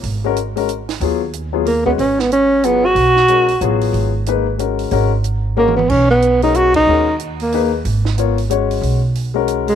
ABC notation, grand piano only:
X:1
M:3/4
L:1/8
Q:"Swing" 1/4=184
K:G#dor
V:1 name="Grand piano"
z [G,CFA] z [G,CFA] z2 | [F,B,EG] z2 [F,B,EG] z [G,CFB] | z4 [F,B,EG] z | z2 [G,CFA] z [F,B,EG]2- |
[F,B,EG] z [A,DGB] z [G,CFA]2 | [G,CFA] z3 [G,CFA] z | z3 [G,CFA]3 | [G,CFA] z3 [A,DGB] z |
z2 [B,EAc] z [G,CFc]2- | [G,CFc] z2 [G,CFA]3 |]